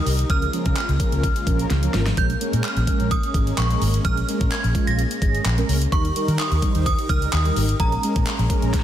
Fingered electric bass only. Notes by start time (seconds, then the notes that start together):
0.06 C2
0.30 C#2
0.66 C#3
0.89 C#2
1.12 C#2
1.47 A#1
1.70 C#2
1.94 G#1
2.17 A#1
2.53 A#2
2.77 A#1
3.00 A#1
3.34 G#1
3.58 A#1
3.82 G#1
4.05 A#1
4.41 A#2
4.64 A#1
4.88 A#1
5.22 G#1
5.45 A#1
5.69 C#2
5.92 D#2
6.28 D#3
6.52 D#2
6.75 D#2
7.09 C#2
7.33 D#2
7.56 G#1
7.80 A#1
8.16 A#2
8.39 A#1
8.63 A#1